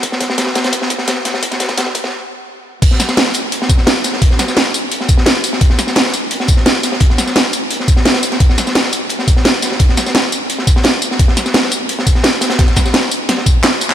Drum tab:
CC |----------------|----------------|x---------------|----------------|
HH |x-x-x-xxx-x-x-x-|xxxxx-x---------|x-x-x-x-x-x-x-x-|x-x-x-x-x-x-x-x-|
TB |----------------|----------------|--xx--x---x---x-|--xx--x---x---x-|
CP |----------------|----------------|----------------|----------------|
SD |-ooooooo-o-oo-oo|-oooo--o--------|-ooooo---o-oo-oo|-oooo----o-oo--o|
BD |o-o-o-o-o-o-o-o-|oooooooo--------|o---------o-----|o---------o-----|

CC |----------------|----------------|----------------|----------------|
HH |x-x-x-x-x-x-x-x-|x-x-x-x-x-x-xxxx|x-x-x-x-x-x-x-x-|x-x-x-x-x-x-x-x-|
TB |--xx--x---x---x-|--xx--x---x---x-|--xx--x---x---x-|--xx--x---x---x-|
CP |----------------|----------------|----------------|----------------|
SD |-ooooo---o-oo-oo|-oooo----o-ooo-o|-ooooo---o-oo-oo|-oooo----o-oo--o|
BD |o---------o-----|o---------o-----|o---------o-----|o---------o-----|

CC |----------------|----------------|
HH |x-x-x-x-x-x-x-xx|xxx-x-x-x-x-x-xx|
TB |--xx--x---x---x-|--xx--x---x---x-|
CP |----------------|------------x--x|
SD |-ooooo---o-oo-oo|ooooo---oo--o--o|
BD |o---------o-----|o-o-------o-----|